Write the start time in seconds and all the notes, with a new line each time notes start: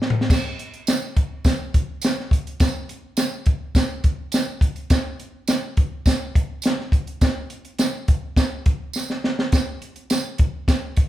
0.02 snare
0.10 floor tom
0.21 snare
0.30 kick, snare, crash, tambourine
0.59 closed hi-hat
0.74 closed hi-hat
0.87 snare, closed hi-hat, tambourine
1.17 kick, closed hi-hat
1.44 kick, snare, closed hi-hat, tambourine
1.74 kick, closed hi-hat
2.02 snare, closed hi-hat, tambourine
2.20 snare
2.31 kick, closed hi-hat
2.47 closed hi-hat
2.60 kick, snare, closed hi-hat, tambourine
2.89 closed hi-hat
3.17 snare, closed hi-hat, tambourine
3.46 kick, closed hi-hat
3.75 kick, snare, closed hi-hat, tambourine
4.04 kick, closed hi-hat
4.32 snare, closed hi-hat, tambourine
4.61 kick, closed hi-hat
4.76 closed hi-hat
4.90 kick, snare, closed hi-hat, tambourine
5.20 closed hi-hat
5.48 snare, closed hi-hat, tambourine
5.77 kick, closed hi-hat
6.06 kick, snare, closed hi-hat, tambourine
6.35 kick, closed hi-hat
6.62 snare, closed hi-hat, tambourine
6.80 snare
6.92 kick, closed hi-hat
7.07 closed hi-hat
7.21 kick, snare, closed hi-hat, tambourine
7.50 closed hi-hat
7.65 closed hi-hat
7.79 snare, closed hi-hat, tambourine
8.08 kick, closed hi-hat
8.36 kick, snare, closed hi-hat, tambourine
8.66 kick, closed hi-hat
8.93 snare, tambourine
9.10 snare
9.24 snare
9.39 snare
9.52 kick, snare, closed hi-hat, tambourine
9.82 closed hi-hat
9.96 closed hi-hat
10.10 snare, closed hi-hat, tambourine
10.38 kick, closed hi-hat
10.68 kick, snare, closed hi-hat, tambourine
10.97 kick, closed hi-hat